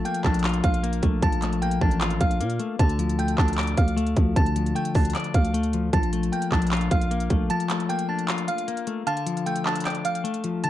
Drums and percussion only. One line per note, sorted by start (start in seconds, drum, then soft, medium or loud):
0.05 closed hi-hat medium
0.14 closed hi-hat medium
0.24 kick loud
0.24 clap medium
0.34 closed hi-hat medium
0.39 closed hi-hat medium
0.44 clap loud
0.44 closed hi-hat medium
0.49 closed hi-hat soft
0.54 closed hi-hat medium
0.64 kick loud
0.64 closed hi-hat medium
0.74 closed hi-hat medium
0.84 closed hi-hat medium
0.93 closed hi-hat medium
1.03 kick medium
1.03 closed hi-hat medium
1.22 kick loud
1.22 closed hi-hat medium
1.32 closed hi-hat medium
1.42 clap loud
1.42 closed hi-hat medium
1.53 closed hi-hat medium
1.62 closed hi-hat medium
1.71 closed hi-hat medium
1.81 kick loud
1.91 closed hi-hat soft
2.01 clap loud
2.01 closed hi-hat medium
2.10 closed hi-hat medium
2.21 kick loud
2.21 closed hi-hat medium
2.31 closed hi-hat medium
2.41 closed hi-hat medium
2.50 closed hi-hat soft
2.60 closed hi-hat medium
2.79 kick loud
2.79 closed hi-hat medium
2.89 closed hi-hat medium
2.99 closed hi-hat medium
3.09 closed hi-hat medium
3.19 closed hi-hat medium
3.28 closed hi-hat medium
3.38 kick loud
3.38 clap medium
3.48 closed hi-hat medium
3.53 closed hi-hat medium
3.58 clap loud
3.58 closed hi-hat medium
3.63 closed hi-hat soft
3.67 closed hi-hat medium
3.77 kick loud
3.77 closed hi-hat medium
3.88 closed hi-hat medium
3.98 closed hi-hat medium
4.07 closed hi-hat soft
4.16 kick loud
4.16 closed hi-hat medium
4.36 kick loud
4.36 closed hi-hat medium
4.46 closed hi-hat medium
4.56 closed hi-hat medium
4.66 closed hi-hat medium
4.76 closed hi-hat medium
4.85 closed hi-hat medium
4.95 kick loud
4.95 open hi-hat medium
5.05 closed hi-hat medium
5.10 closed hi-hat medium
5.15 clap loud
5.15 closed hi-hat medium
5.20 closed hi-hat soft
5.24 closed hi-hat medium
5.34 kick loud
5.34 closed hi-hat medium
5.45 closed hi-hat medium
5.54 closed hi-hat medium
5.63 closed hi-hat soft
5.73 closed hi-hat medium
5.93 kick loud
5.93 closed hi-hat medium
6.03 closed hi-hat medium
6.13 closed hi-hat medium
6.23 closed hi-hat medium
6.33 closed hi-hat medium
6.42 closed hi-hat medium
6.52 kick loud
6.52 clap medium
6.62 closed hi-hat medium
6.67 closed hi-hat medium
6.72 clap loud
6.72 closed hi-hat medium
6.76 closed hi-hat soft
6.81 closed hi-hat medium
6.91 kick loud
6.91 closed hi-hat medium
7.01 closed hi-hat medium
7.11 closed hi-hat medium
7.20 closed hi-hat medium
7.30 kick medium
7.30 closed hi-hat medium
7.50 closed hi-hat medium
7.60 closed hi-hat medium
7.70 clap loud
7.70 closed hi-hat medium
7.80 closed hi-hat soft
7.90 closed hi-hat medium
7.99 closed hi-hat medium
8.19 closed hi-hat soft
8.28 clap loud
8.28 closed hi-hat medium
8.38 closed hi-hat medium
8.48 closed hi-hat medium
8.58 closed hi-hat medium
8.68 closed hi-hat medium
8.77 closed hi-hat soft
8.87 closed hi-hat medium
9.07 closed hi-hat medium
9.17 closed hi-hat medium
9.27 closed hi-hat medium
9.37 closed hi-hat soft
9.46 closed hi-hat medium
9.56 closed hi-hat medium
9.66 clap medium
9.75 closed hi-hat medium
9.80 closed hi-hat medium
9.85 clap loud
9.85 closed hi-hat medium
9.90 closed hi-hat soft
9.95 closed hi-hat medium
10.05 closed hi-hat medium
10.15 closed hi-hat medium
10.25 closed hi-hat medium
10.34 closed hi-hat soft
10.44 closed hi-hat medium
10.64 closed hi-hat medium